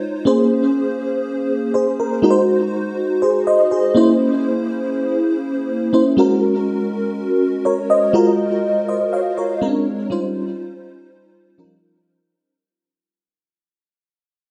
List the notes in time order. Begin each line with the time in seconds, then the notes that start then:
Already playing: G#3 D#4 F4 C5 C#5
0.25 A#3 C#4 G#4 C5
1.74 G#4 C5
2.00 A#4
2.22 G#3 D#4 F#4 A#4
2.30 C5
3.22 G#4 C5
3.47 C5 D#5
3.71 G#4 C5
3.94 A#3 C#4 E4 C5
5.93 A#3 C#4 E4 C5
6.17 G#3 C#4 F#4 A#4
7.65 A#4 C#5
7.90 C5 D#5
8.13 G#3 F4 F#4 A#4
8.88 C5 D#5
9.13 C#5 F5
9.37 A#4 C#5
9.61 G#3 C4 C#4 A#4
9.68 D4
10.10 G3 C#4 D#4 F4 C5
11.58 F3 C#4 D#4 F4 A#4
11.64 G3